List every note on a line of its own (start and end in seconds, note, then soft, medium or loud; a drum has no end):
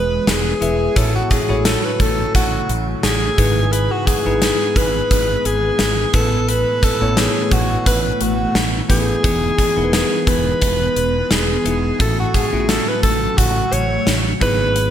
0.00 0.17 E1 medium
0.00 0.93 E3 medium
0.00 0.98 E3 medium
0.00 0.93 G#3 medium
0.00 0.93 B3 medium
0.00 0.61 E4 medium
0.00 0.62 G#4 medium
0.00 0.29 B4 medium
0.00 0.62 B4 medium
0.00 0.97 C#5 medium
0.00 0.98 D#5 medium
0.27 0.52 E1 medium
0.27 0.98 G#4 medium
0.27 snare loud
0.27 closed hi-hat medium
0.61 0.87 E1 medium
0.61 0.88 E4 medium
0.61 0.88 G#4 medium
0.61 0.88 B4 medium
0.61 0.89 E5 medium
0.61 closed hi-hat medium
0.96 1.21 A1 loud
0.96 1.96 A2 medium
0.96 3.35 C#3 medium
0.96 3.35 F#3 medium
0.96 3.35 A3 medium
0.96 1.35 E4 medium
0.96 1.35 F#4 medium
0.96 1.15 A4 medium
0.96 1.35 A4 medium
0.96 1.35 C#5 medium
0.96 kick loud
0.96 closed hi-hat medium
1.15 1.32 F#4 medium
1.31 1.68 G#4 medium
1.31 kick medium
1.31 closed hi-hat medium
1.49 1.75 A1 medium
1.49 2.51 E4 medium
1.49 2.51 F#4 medium
1.49 2.52 A4 medium
1.49 2.52 C#5 medium
1.65 1.86 A4 medium
1.65 snare loud
1.65 closed hi-hat medium
1.85 2.03 B4 medium
2.00 2.25 A1 medium
2.00 2.35 A4 medium
2.00 kick medium
2.00 closed hi-hat medium
2.35 2.59 A1 medium
2.35 2.75 F#4 medium
2.35 kick medium
2.35 closed hi-hat medium
2.69 2.94 A1 loud
2.69 closed hi-hat medium
3.03 3.29 A1 medium
3.03 3.73 G#4 medium
3.03 snare loud
3.03 closed hi-hat medium
3.38 3.88 G#1 medium
3.38 4.38 G#2 medium
3.38 6.11 E3 medium
3.38 6.11 G#3 medium
3.38 6.11 B3 medium
3.38 4.07 D#4 medium
3.38 4.07 E4 medium
3.38 4.07 G#4 medium
3.38 4.07 B4 medium
3.38 kick medium
3.38 closed hi-hat medium
3.72 3.93 B4 medium
3.72 closed hi-hat medium
3.92 4.09 F#4 medium
4.07 4.79 G#4 loud
4.07 kick medium
4.07 closed hi-hat medium
4.26 4.51 G#1 medium
4.26 5.28 D#4 medium
4.26 5.28 E4 medium
4.26 5.28 G#4 medium
4.26 5.28 B4 medium
4.42 snare loud
4.42 closed hi-hat medium
4.76 5.01 G#1 loud
4.76 5.47 B4 medium
4.76 kick medium
4.76 closed hi-hat medium
5.11 5.36 G#1 medium
5.11 kick medium
5.11 closed hi-hat medium
5.45 5.70 G#1 medium
5.45 6.14 G#4 medium
5.45 closed hi-hat medium
5.79 6.04 G#1 medium
5.79 snare loud
5.79 closed hi-hat medium
6.13 6.64 A1 loud
6.13 7.13 A2 medium
6.13 9.21 B2 medium
6.13 9.21 E3 medium
6.13 9.21 A3 medium
6.13 6.83 B3 medium
6.13 6.83 E4 medium
6.13 6.83 A4 medium
6.13 6.50 A4 medium
6.13 6.83 B4 medium
6.13 kick loud
6.13 closed hi-hat medium
6.49 6.86 B4 loud
6.49 closed hi-hat medium
6.83 7.20 A4 medium
6.83 kick medium
6.83 closed hi-hat medium
7.01 7.26 A1 medium
7.01 8.04 A3 medium
7.01 8.03 B3 medium
7.01 8.03 E4 medium
7.01 8.04 C#5 medium
7.17 7.54 G#4 medium
7.17 snare loud
7.17 closed hi-hat medium
7.51 7.77 A1 medium
7.51 7.86 F#4 medium
7.51 kick medium
7.51 closed hi-hat medium
7.86 8.11 A1 medium
7.86 8.24 B4 medium
7.86 kick medium
7.86 closed hi-hat medium
8.21 8.46 A1 medium
8.21 8.64 F#4 medium
8.21 closed hi-hat medium
8.55 8.80 A1 loud
8.55 snare loud
8.55 closed hi-hat medium
8.88 9.14 A1 medium
8.88 9.15 B3 medium
8.88 9.16 E4 medium
8.88 9.90 G#4 loud
8.88 9.16 A4 medium
8.88 9.16 B4 medium
8.88 kick medium
8.88 closed hi-hat medium
9.23 9.49 E1 medium
9.23 11.97 E3 medium
9.23 10.23 E3 medium
9.23 11.97 G#3 medium
9.23 9.62 B3 medium
9.23 11.97 B3 medium
9.23 9.62 D#4 medium
9.23 9.63 E4 medium
9.23 9.63 G#4 medium
9.23 kick loud
9.23 closed hi-hat medium
9.58 kick medium
9.58 closed hi-hat medium
9.76 10.02 E1 medium
9.76 10.79 B3 medium
9.76 10.79 D#4 medium
9.76 10.79 E4 medium
9.76 9.83 A#4 medium
9.84 10.83 B4 medium
9.93 10.30 G#4 medium
9.93 snare loud
9.93 closed hi-hat medium
10.27 10.52 E1 medium
10.27 11.33 B4 loud
10.27 kick medium
10.27 closed hi-hat medium
10.62 10.87 E1 medium
10.62 kick medium
10.62 closed hi-hat medium
10.96 11.21 E1 medium
10.96 closed hi-hat medium
11.31 11.56 E1 medium
11.31 12.00 G#4 medium
11.31 snare loud
11.31 closed hi-hat medium
11.65 11.90 E1 medium
11.65 11.91 B3 medium
11.65 11.92 D#4 medium
11.65 11.92 E4 medium
11.65 11.92 G#4 medium
11.65 closed hi-hat medium
11.99 12.25 A1 medium
11.99 12.99 A2 medium
11.99 14.39 C#3 medium
11.99 14.39 F#3 medium
11.99 12.38 A3 medium
11.99 14.39 A3 medium
11.99 12.38 C#4 medium
11.99 12.38 E4 medium
11.99 12.39 F#4 medium
11.99 12.18 A4 medium
11.99 kick loud
11.99 closed hi-hat medium
12.20 12.36 F#4 medium
12.34 12.71 G#4 medium
12.34 kick medium
12.34 closed hi-hat medium
12.53 12.78 A1 medium
12.53 13.55 A3 medium
12.53 13.55 C#4 medium
12.53 13.55 E4 medium
12.53 12.59 F4 medium
12.60 13.59 F#4 medium
12.69 12.90 A4 medium
12.69 snare loud
12.69 closed hi-hat medium
12.88 13.02 B4 medium
13.03 13.28 A1 medium
13.03 13.39 A4 medium
13.03 kick medium
13.03 closed hi-hat medium
13.38 13.63 A1 loud
13.38 13.74 F#4 loud
13.38 kick medium
13.38 closed hi-hat medium
13.72 13.97 A1 medium
13.72 14.15 C#5 loud
13.72 closed hi-hat medium
14.07 14.32 A1 medium
14.07 snare loud
14.07 closed hi-hat medium
14.40 14.90 G#1 medium
14.40 14.90 G#2 medium
14.40 14.90 B3 medium
14.40 14.90 D#4 medium
14.40 14.90 E4 medium
14.40 14.90 G#4 medium
14.40 14.90 B4 loud
14.40 kick loud
14.40 closed hi-hat medium
14.76 closed hi-hat medium